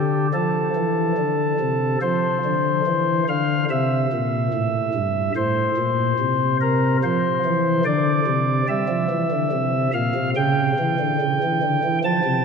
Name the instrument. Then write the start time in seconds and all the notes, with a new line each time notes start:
pipe organ
Already playing: D3 G4
0.34 F3 A4
0.76 E3
1.18 D3
1.60 C3
2.02 F3 C5
2.45 D3
2.87 E3
3.29 D3 F5
3.70 C3 E5
4.13 A#2
4.53 A2
4.94 G2
5.36 A2 C5
5.77 A#2
6.19 C3
6.61 A#4
7.04 F3 C5
7.45 E3
7.85 D3 D5
8.27 C3
8.68 G3 E5
8.89 F3
9.10 E3
9.31 D3
9.52 C3
9.94 A#2 F5
10.15 C3
10.36 C#3 G5
10.79 E3
11.00 D3
11.21 C#3
11.43 E3
11.63 D3
11.84 E3
12.04 F3 A5
12.24 C3